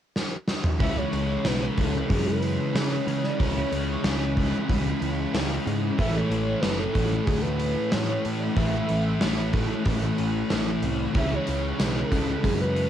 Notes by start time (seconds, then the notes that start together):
0.16 snare
0.48 snare
0.64 mid tom
0.79 C#2 C#3 E3 G#3 C#4 E4 E5, kick, open hi-hat
0.97 C#5
1.12 C#2 E3 G#3 C#4, open hi-hat
1.44 B1 C#3 E3 G#3 C#4 E4 B4, snare, open hi-hat
1.62 A4
1.76 C#2 G#3 C#4 E4, kick, open hi-hat
2.08 F#2 E3 G#3 C#4 E4 G#4, kick, open hi-hat
2.27 B4
2.41 E3 G#3 C#4 E4, open hi-hat
2.74 C#3 E3 G#3 C#4 E4 C#5, snare, open hi-hat
3.06 C#3 G#3 C#4, open hi-hat
3.24 D5, snare
3.39 C#2 C#3 E3 G#3 C#4 E4 C#5, kick, open hi-hat
3.71 C#2 E3 C#4, open hi-hat
3.75 G#3
4.03 C#2 C#3 E3 G#3 C#4 E4, snare, open hi-hat
4.35 G#3 C#4 E4, kick, open hi-hat
4.67 C#2 E3 G#3 C#4 E4, kick, open hi-hat
4.99 C#2 E3 G#3 C#4 E4, open hi-hat
5.32 C#2 C#3 E3 G#3 C#4 E4, snare, open hi-hat
5.65 G#2 G#3 C#4, open hi-hat
5.98 A1 A2 E3 A3 C#4 E4 E5, kick, open hi-hat
6.17 C#5
6.29 A1 E3 A3, open hi-hat
6.61 F#1 A2 E3 A3 C#4 E4 B4, snare, open hi-hat
6.78 A4
6.93 A1 E3 A3 C#4 E4, kick, open hi-hat
7.25 D2 E3 A3 C#4 E4 G#4, kick, open hi-hat
7.41 B4
7.58 E3 A3 C#4 E4, open hi-hat
7.90 A2 E3 A3 C#4 E4 C#5, snare, open hi-hat
8.23 A2 E3 A3, open hi-hat
8.39 D5
8.54 A1 A2 E3 A3 C#4 E4 E5, kick, open hi-hat
8.86 A1 E3 A3, open hi-hat
9.20 A1 A2 E3 A3 C#4 E4, snare, open hi-hat
9.52 E3 A3 C#4 E4, kick, open hi-hat
9.84 A1 E3 A3 C#4 E4, kick, open hi-hat
10.17 A1 E3 A3 C#4 E4, open hi-hat
10.50 A1 A2 E3 A3 C#4 E4, snare, open hi-hat
10.83 C2 E3 A3, open hi-hat
11.14 C#2 C#3 E3 G#3 C#4 E4 E5, kick, open hi-hat, tambourine
11.35 C#5
11.46 C#2 E3 G#3 C#4, open hi-hat, tambourine
11.78 B1 C#3 E3 G#3 C#4 E4, snare, open hi-hat, tambourine
11.84 B4
11.97 A4
12.10 C#2 G#3 C#4 E4, kick, open hi-hat, tambourine
12.43 F#2 E3 G#3 C#4 E4 G#4, kick, open hi-hat, tambourine
12.61 B4
12.75 E3 G#3 C#4 E4, open hi-hat